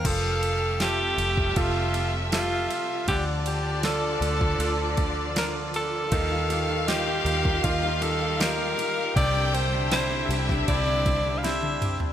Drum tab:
CC |x---------------|----------------|----------------|----------------|
RD |x-x-x-x-x-x-x-x-|x-x-x-x-x-x-x-x-|x-x-x-x-x-x-x-x-|x-x-x-x-x-x-x-x-|
SD |----o-------o---|----o-------o---|----o-------o---|----o--o----o---|
T1 |----------------|----------------|----------------|-------------o--|
T2 |----------------|----------------|----------------|--------------o-|
FT |----------------|----------------|----------------|---------------o|
BD |o------oo-------|o------o--o-----|o------oo-------|o------oo-o-----|